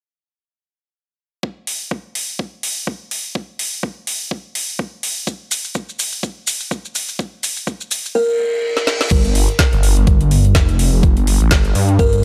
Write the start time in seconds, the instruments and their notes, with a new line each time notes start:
1.43 kick
1.67 open hi-hat
1.91 kick
2.15 open hi-hat
2.39 kick
2.63 open hi-hat
2.87 kick
3.11 open hi-hat
3.35 kick
3.59 open hi-hat
3.83 kick
4.07 open hi-hat
4.31 kick
4.55 open hi-hat
4.79 kick
5.03 open hi-hat
5.27 kick, maracas
5.51 open hi-hat, maracas
5.64 maracas
5.75 kick, maracas
5.89 maracas
5.99 open hi-hat, maracas
6.12 maracas
6.23 kick, maracas
6.47 open hi-hat, maracas
6.60 maracas
6.71 kick, maracas
6.85 maracas
6.95 open hi-hat, maracas
7.09 maracas
7.19 kick, maracas
7.43 open hi-hat, maracas
7.57 maracas
7.67 kick, maracas
7.81 maracas
7.91 open hi-hat, maracas
8.06 maracas
8.15 kalimba A#4, reverse cymbal
8.77 snare
8.87 snare
9.01 snare
9.11 detuned saw bass G1, kick, closed hi-hat, crash
9.25 closed hi-hat
9.35 open hi-hat
9.49 closed hi-hat
9.59 kick, snare, closed hi-hat
9.73 detuned saw bass G1, closed hi-hat
9.83 open hi-hat
9.97 detuned saw bass G1, closed hi-hat
10.07 kick, closed hi-hat
10.21 detuned saw bass G1, closed hi-hat
10.31 open hi-hat
10.45 closed hi-hat
10.55 kick, snare, closed hi-hat
10.69 closed hi-hat
10.79 open hi-hat
10.93 detuned saw bass F1
11.03 kick, closed hi-hat
11.17 detuned saw bass G1, closed hi-hat
11.27 open hi-hat
11.41 detuned saw bass A1, closed hi-hat
11.51 kick, snare, closed hi-hat
11.65 closed hi-hat
11.75 detuned saw bass G2, open hi-hat
11.89 closed hi-hat
11.99 detuned saw bass G1, kalimba A#4, kick, closed hi-hat
12.13 closed hi-hat